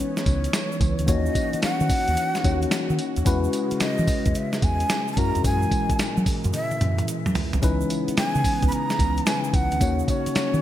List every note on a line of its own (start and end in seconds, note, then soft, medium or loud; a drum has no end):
0.00 3.22 E3 medium
0.00 1.03 G#3 medium
0.00 1.06 B3 medium
0.00 1.03 C#4 medium
0.00 1.06 C#4 medium
0.00 1.04 D#4 medium
0.00 1.04 E4 medium
0.00 1.04 B4 loud
0.00 1.10 C#5 medium
0.17 snare medium
0.17 shaker medium
0.26 0.46 C#2 medium
0.26 kick medium
0.26 closed hi-hat medium
0.26 tambourine medium
0.44 closed hi-hat medium
0.44 shaker soft
0.53 snare loud
0.53 closed hi-hat medium
0.53 tambourine loud
0.53 shaker medium
0.72 shaker medium
0.81 0.94 C#2 loud
0.81 kick loud
0.81 closed hi-hat medium
0.81 tambourine medium
0.99 1.06 D2 loud
0.99 closed hi-hat soft
0.99 shaker medium
1.06 1.28 D#2 loud
1.06 2.41 A#3 medium
1.06 2.41 C#4 medium
1.06 3.24 C#4 medium
1.06 2.41 D#4 medium
1.06 5.13 F#4 loud
1.06 2.42 F#4 medium
1.06 2.42 C#5 medium
1.06 1.63 D#5 loud
1.06 kick loud
1.06 closed hi-hat medium
1.06 tambourine medium
1.06 shaker medium
1.26 shaker medium
1.35 kick medium
1.35 closed hi-hat medium
1.35 tambourine medium
1.35 shaker medium
1.53 muted fingered electric bass stroke soft
1.53 closed hi-hat medium
1.53 shaker medium
1.62 2.95 F#5 loud
1.62 muted fingered electric bass stroke soft
1.62 snare loud
1.62 closed hi-hat medium
1.62 tambourine medium
1.62 shaker medium
1.80 1.87 D#3 loud
1.80 shaker soft
1.89 kick loud
1.89 open hi-hat medium
1.89 tambourine medium
1.89 shaker medium
2.08 2.15 D#2 medium
2.08 closed hi-hat medium
2.08 shaker soft
2.17 closed hi-hat medium
2.17 shaker medium
2.35 snare medium
2.35 shaker medium
2.44 2.65 D#2 loud
2.44 3.26 A#3 medium
2.44 3.24 C#4 medium
2.44 3.26 D#4 medium
2.44 3.25 F#4 medium
2.44 3.26 C#5 medium
2.44 kick medium
2.44 closed hi-hat medium
2.44 tambourine medium
2.62 closed hi-hat medium
2.62 shaker soft
2.71 snare loud
2.71 closed hi-hat medium
2.71 tambourine loud
2.71 shaker medium
2.90 2.97 D#3 loud
2.90 shaker medium
2.99 closed hi-hat medium
2.99 tambourine medium
3.16 3.24 D#2 loud
3.16 closed hi-hat soft
3.16 shaker medium
3.25 3.46 E2 loud
3.25 5.15 C#3 medium
3.25 5.13 G#3 medium
3.25 7.58 G#3 medium
3.25 5.13 C#4 medium
3.25 5.13 E4 medium
3.25 5.13 F#4 medium
3.25 5.14 B4 loud
3.25 kick loud
3.25 closed hi-hat medium
3.25 tambourine medium
3.25 shaker medium
3.44 shaker soft
3.53 closed hi-hat medium
3.53 tambourine medium
3.53 shaker medium
3.71 muted fingered electric bass stroke soft
3.71 closed hi-hat medium
3.71 shaker medium
3.80 4.38 D#5 medium
3.80 muted fingered electric bass stroke soft
3.80 snare loud
3.80 closed hi-hat medium
3.80 tambourine medium
3.80 shaker medium
3.98 4.06 E3 loud
3.98 shaker medium
4.07 kick loud
4.07 open hi-hat medium
4.07 tambourine medium
4.07 shaker medium
4.26 4.33 E2 loud
4.26 kick loud
4.26 closed hi-hat medium
4.26 shaker soft
4.35 4.65 E5 medium
4.35 closed hi-hat medium
4.35 shaker medium
4.53 snare medium
4.53 shaker medium
4.62 4.83 E2 loud
4.62 5.12 G#5 loud
4.62 kick loud
4.62 closed hi-hat medium
4.62 tambourine medium
4.80 closed hi-hat medium
4.80 shaker soft
4.89 snare loud
4.89 closed hi-hat medium
4.89 tambourine medium
4.89 shaker medium
5.08 shaker soft
5.13 7.31 G#3 medium
5.13 5.20 A5 medium
5.17 5.30 F#2 loud
5.17 7.60 A#2 medium
5.17 9.77 E3 medium
5.17 7.31 C#4 medium
5.17 7.31 E4 medium
5.17 7.32 F#4 medium
5.17 7.32 A#4 medium
5.17 5.45 A#5 loud
5.17 kick loud
5.17 closed hi-hat medium
5.17 tambourine medium
5.35 5.42 F2 loud
5.35 closed hi-hat soft
5.35 shaker medium
5.44 5.64 F#2 loud
5.44 6.23 G#5 loud
5.44 kick loud
5.44 closed hi-hat medium
5.44 tambourine medium
5.44 shaker medium
5.62 shaker soft
5.71 kick medium
5.71 closed hi-hat medium
5.71 tambourine medium
5.89 muted fingered electric bass stroke soft
5.89 kick loud
5.89 closed hi-hat medium
5.89 shaker medium
5.99 muted fingered electric bass stroke medium
5.99 snare loud
5.99 closed hi-hat medium
5.99 tambourine loud
5.99 shaker medium
6.17 6.24 F#3 loud
6.17 shaker soft
6.26 kick loud
6.26 open hi-hat medium
6.26 tambourine medium
6.26 shaker medium
6.44 6.52 F#2 loud
6.44 closed hi-hat medium
6.44 shaker soft
6.53 7.05 E5 loud
6.53 closed hi-hat medium
6.53 high tom medium
6.53 shaker medium
6.71 high tom medium
6.71 shaker medium
6.81 7.01 F#2 medium
6.81 closed hi-hat medium
6.81 mid tom medium
6.81 shaker medium
6.98 closed hi-hat medium
6.98 mid tom medium
6.98 shaker soft
7.08 closed hi-hat medium
7.08 shaker medium
7.26 7.33 F#3 medium
7.26 mid tom medium
7.26 shaker medium
7.35 floor tom loud
7.35 open hi-hat medium
7.35 shaker soft
7.53 7.60 C2 medium
7.53 closed hi-hat medium
7.53 floor tom medium
7.53 shaker medium
7.62 7.83 C#2 loud
7.62 10.62 C#3 medium
7.62 9.22 G#3 medium
7.62 9.78 B3 medium
7.62 9.23 C#4 medium
7.62 9.23 D#4 medium
7.62 9.23 E4 medium
7.62 9.24 B4 medium
7.62 kick loud
7.62 closed hi-hat medium
7.62 tambourine medium
7.62 shaker medium
7.81 shaker medium
7.90 closed hi-hat medium
7.90 tambourine medium
7.90 shaker medium
8.08 muted fingered electric bass stroke soft
8.08 closed hi-hat medium
8.08 shaker soft
8.17 8.64 G#5 loud
8.17 muted fingered electric bass stroke medium
8.17 snare loud
8.17 closed hi-hat medium
8.17 tambourine medium
8.17 shaker medium
8.35 8.42 C#3 loud
8.35 shaker soft
8.44 kick loud
8.44 open hi-hat medium
8.44 tambourine medium
8.44 shaker medium
8.62 8.69 C#2 medium
8.62 kick medium
8.62 closed hi-hat medium
8.62 shaker soft
8.68 8.74 B5 medium
8.68 shaker medium
8.72 9.29 A#5 loud
8.72 closed hi-hat medium
8.90 snare medium
8.90 shaker medium
8.99 9.19 C#2 loud
8.99 kick medium
8.99 closed hi-hat medium
8.99 tambourine medium
9.17 closed hi-hat medium
9.17 shaker soft
9.26 9.81 G#3 soft
9.26 9.79 C#4 soft
9.26 9.80 D#4 soft
9.26 9.81 E4 soft
9.26 9.81 B4 medium
9.26 9.56 G#5 loud
9.26 snare loud
9.26 closed hi-hat medium
9.26 tambourine loud
9.26 shaker medium
9.44 shaker medium
9.54 9.67 C#2 medium
9.54 10.11 F#5 loud
9.54 kick loud
9.54 closed hi-hat medium
9.54 tambourine medium
9.72 9.78 D2 medium
9.72 closed hi-hat soft
9.72 shaker soft
9.80 10.01 D#2 loud
9.80 10.62 A#3 medium
9.80 10.62 C#4 medium
9.80 10.62 D#4 medium
9.80 10.62 F#4 medium
9.80 10.62 C#5 medium
9.80 kick loud
9.80 closed hi-hat medium
9.80 tambourine medium
9.80 shaker medium
9.99 shaker medium
10.08 10.62 C#5 loud
10.08 kick medium
10.08 closed hi-hat medium
10.08 tambourine medium
10.08 shaker medium
10.26 muted fingered electric bass stroke medium
10.26 closed hi-hat medium
10.26 shaker medium
10.35 muted fingered electric bass stroke soft
10.35 snare loud
10.35 closed hi-hat medium
10.35 tambourine medium
10.35 shaker medium
10.54 10.60 D#3 loud
10.54 shaker soft